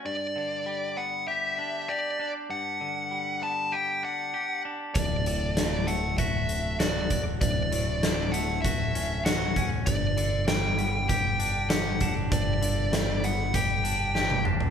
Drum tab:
HH |----------------|----------------|x-x-x-x-x-x-x-x-|x-x-x-x-x-x-x-x-|
SD |----------------|----------------|----o-------o---|----o-------o---|
T1 |----------------|----------------|----------------|----------------|
T2 |----------------|----------------|----------------|----------------|
FT |----------------|----------------|----------------|----------------|
BD |----------------|----------------|o-------o-----o-|o-------o-----o-|

HH |x-x-x-x-x-x-x-x-|x-x-x-x-x-x-----|
SD |----o-------o---|----o-------o---|
T1 |----------------|-------------o--|
T2 |----------------|--------------o-|
FT |----------------|---------------o|
BD |o-------o-----o-|o-------o-------|